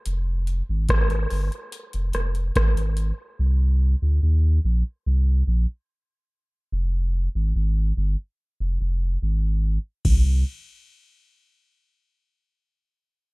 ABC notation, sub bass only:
X:1
M:4/4
L:1/16
Q:1/4=72
K:Fdor
V:1 name="Sub bass" clef=bass
F,,,3 A,,, A,,,2 G,,, z2 F,,, F,,,2 A,,,3 z | C,,3 D,, E,,2 B,,, z C,,2 B,,, z4 z | F,,,3 A,,, A,,,2 G,,, z2 F,,, F,,,2 A,,,3 z | C,,2 z12 z2 |]